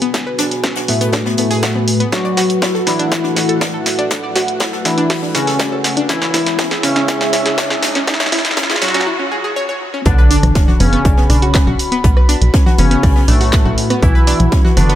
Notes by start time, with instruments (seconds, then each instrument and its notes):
Already playing: analog synth pad B3 F#4 B4 G#5
0.02 synth pluck B3, closed hi-hat
0.14 synth pluck B3, kick, snare, closed hi-hat
0.27 synth pluck B4
0.38 synth pluck D4, snare, closed hi-hat, open hi-hat, low conga
0.51 snare, closed hi-hat
0.64 synth pluck C#4, kick, snare, closed hi-hat
0.75 synth pluck F#4, snare, closed hi-hat
0.88 analog polysynth A2 A3, synth pluck B3, snare, open hi-hat
1.01 synth pluck B3, closed hi-hat
1.12 synth pluck D4, kick, snare, closed hi-hat
1.25 synth pluck B3, snare
1.37 analog polysynth A2 A3, synth pluck B3, closed hi-hat, open hi-hat, low conga
1.50 synth pluck G#4, snare, open hi-hat
1.63 synth pluck F#4, kick, snare, closed hi-hat
1.75 synth pluck B3, low conga
1.87 closed hi-hat, open hi-hat
2.00 synth pluck B3, closed hi-hat
2.12 analog polysynth F#3 F#4, analog synth pad A3 F#5, synth pluck D4, kick, snare, closed hi-hat, riser
2.24 synth pluck D5, closed hi-hat
2.37 synth pluck F#4, snare, closed hi-hat, open hi-hat, low conga
2.50 closed hi-hat
2.62 synth pluck E4, kick, snare, closed hi-hat
2.75 synth pluck A4, snare
2.87 analog polysynth E3 E4, synth pluck D4, snare, closed hi-hat, open hi-hat
2.99 synth pluck D4, closed hi-hat
3.12 synth pluck F#4, kick, snare, closed hi-hat
3.24 synth pluck D4, snare
3.36 synth pluck F#4, snare, closed hi-hat, open hi-hat, low conga
3.49 synth pluck A4, closed hi-hat
3.61 synth pluck D5, kick, snare, closed hi-hat
3.74 synth pluck A4
3.86 snare, closed hi-hat, open hi-hat
3.99 synth pluck D4, closed hi-hat
4.10 synth pluck D4, kick, snare, closed hi-hat
4.23 synth pluck D5
4.35 synth pluck F#4, snare, closed hi-hat, open hi-hat, low conga
4.48 closed hi-hat
4.60 synth pluck E4, kick, snare, closed hi-hat
4.73 synth pluck A4, snare
4.85 analog polysynth E3 E4, synth pluck D4, snare, closed hi-hat, open hi-hat
4.98 synth pluck D4, closed hi-hat
5.10 synth pluck F#4, kick, snare, closed hi-hat, open hi-hat
5.22 synth pluck D4, snare
5.35 analog polysynth C#3 C#4, synth pluck F#4, snare, closed hi-hat, open hi-hat, low conga
5.47 synth pluck A4, snare, open hi-hat
5.59 synth pluck D5, kick, snare, closed hi-hat
5.72 synth pluck A4, low conga
5.84 snare, closed hi-hat, open hi-hat
5.97 synth pluck D4, closed hi-hat
6.09 analog polysynth E3 E4, analog synth pad G#3 E4 C#5 E5, synth pluck C#4, kick, snare, closed hi-hat
6.21 synth pluck C#5, snare, closed hi-hat
6.34 synth pluck E4, snare, closed hi-hat, open hi-hat, low conga
6.46 snare, closed hi-hat
6.59 synth pluck C#4, kick, snare, closed hi-hat
6.71 synth pluck G#4, snare
6.83 analog polysynth C#3 C#4, synth pluck C#4, snare, closed hi-hat, open hi-hat
6.96 synth pluck C#4, snare, closed hi-hat
7.08 synth pluck E4, kick, snare, closed hi-hat
7.21 synth pluck C#4, snare
7.33 synth pluck E4, snare, closed hi-hat, open hi-hat, low conga
7.46 synth pluck G#4, snare, closed hi-hat
7.58 synth pluck C#5, kick, snare, closed hi-hat
7.70 synth pluck G#4, snare
7.83 snare, closed hi-hat, open hi-hat
7.95 synth pluck C#4, snare, closed hi-hat
8.07 synth pluck C#4, kick, snare, closed hi-hat
8.14 snare
8.20 synth pluck C#5, snare, closed hi-hat
8.26 snare
8.32 synth pluck E4, snare, open hi-hat, low conga
8.38 snare
8.45 snare, closed hi-hat
8.51 snare
8.57 synth pluck C#4, kick, snare, closed hi-hat
8.63 snare
8.70 synth pluck G#4, snare
8.76 snare
8.82 analog polysynth F#3 F#4, synth pluck C#4, snare, closed hi-hat, open hi-hat
8.88 snare
8.94 synth pluck C#4, snare, closed hi-hat
9.00 snare
9.07 synth pluck E4
9.19 synth pluck C#4
9.32 synth pluck G#4
9.44 synth pluck G#4
9.56 synth pluck C#5
9.69 synth pluck C#5
9.94 synth pluck C#4
10.05 analog synth bass B1, analog polysynth D3 D4, synth pluck B3 B4, analog synth pad F#4 B4 F#5 B5, kick, closed hi-hat, sub drop
10.18 synth pluck B4 B5, closed hi-hat
10.31 synth pluck D4 D5, closed hi-hat, open hi-hat
10.43 analog synth bass B1, cross-stick, closed hi-hat, low conga
10.55 synth pluck C#4 C#5, kick, snare, closed hi-hat
10.68 synth pluck F#4 F#5, snare, low conga
10.80 analog synth bass F#1, analog polysynth C#3 C#4, synth pluck B3 B4, closed hi-hat, open hi-hat, low conga
10.93 synth pluck B3 B4, closed hi-hat
11.05 analog synth bass B1, synth pluck D4 D5, kick, closed hi-hat
11.17 synth pluck B3 B4, snare
11.30 analog synth bass B1, synth pluck D4 D5, cross-stick, closed hi-hat, open hi-hat
11.42 synth pluck F#4 F#5, closed hi-hat
11.55 synth pluck B4 B5, kick, snare, clap, closed hi-hat
11.67 analog synth bass B1, synth pluck F#4 F#5
11.79 closed hi-hat, open hi-hat
11.92 synth pluck B3 B4, closed hi-hat
12.04 analog synth bass B1, synth pluck B3 B4, kick, closed hi-hat
12.17 synth pluck B4 B5, cross-stick
12.29 synth pluck D4 D5, closed hi-hat, open hi-hat
12.41 analog synth bass B1, closed hi-hat
12.54 synth pluck C#4 C#5, kick, snare, closed hi-hat
12.66 synth pluck F#4 F#5, snare, low conga
12.78 analog synth bass F#1, analog polysynth C#3 C#4, synth pluck B3 B4, closed hi-hat, open hi-hat, low conga
12.91 synth pluck B3 B4, closed hi-hat
13.03 analog synth bass B1, synth pluck D4 D5, kick, cross-stick, closed hi-hat, open hi-hat
13.16 synth pluck B3 B4, snare
13.28 analog synth bass B1, analog polysynth A2 A3, synth pluck D4 D5, closed hi-hat, open hi-hat
13.41 synth pluck F#4 F#5, snare, open hi-hat
13.52 synth pluck B4 B5, kick, snare, clap, closed hi-hat
13.65 analog synth bass B1, synth pluck F#4 F#5
13.78 closed hi-hat, open hi-hat
13.90 synth pluck B3 B4, cross-stick, closed hi-hat
14.02 analog synth bass B1, analog polysynth E3 E4, synth pluck B3 B4, analog synth pad C#6, kick, closed hi-hat
14.15 synth pluck B4 B5, closed hi-hat
14.27 synth pluck D4 D5, closed hi-hat, open hi-hat
14.40 analog synth bass B1, closed hi-hat, low conga
14.52 synth pluck C#4 C#5, kick, snare, closed hi-hat
14.65 synth pluck F#4 F#5, snare, low conga
14.77 analog synth bass F#1, analog polysynth D3 D4, synth pluck B3 B4, cross-stick, closed hi-hat, open hi-hat, low conga
14.89 synth pluck B3 B4, closed hi-hat